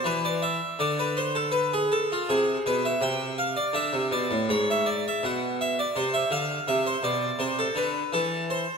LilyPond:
<<
  \new Staff \with { instrumentName = "Harpsichord" } { \time 4/4 \key e \phrygian \tempo 4 = 82 b'16 d''16 e''8 d''16 b'16 c''16 a'16 b'16 gis'16 a'16 f'16 gis'8 b'16 e''16 | g''8 f''16 d''16 e''8 d''8 cis''16 e''16 d''16 e''16 fis''8 e''16 d''16 | c''16 e''16 f''8 e''16 c''16 d''8 c''16 a'16 b'8 a'8 c''8 | }
  \new Staff \with { instrumentName = "Harpsichord" } { \clef bass \time 4/4 \key e \phrygian e4 d2 c8 b,8 | c4 d16 c16 b,16 a,16 gis,4 b,4 | c8 d8 c8 b,8 c8 d8 e4 | }
>>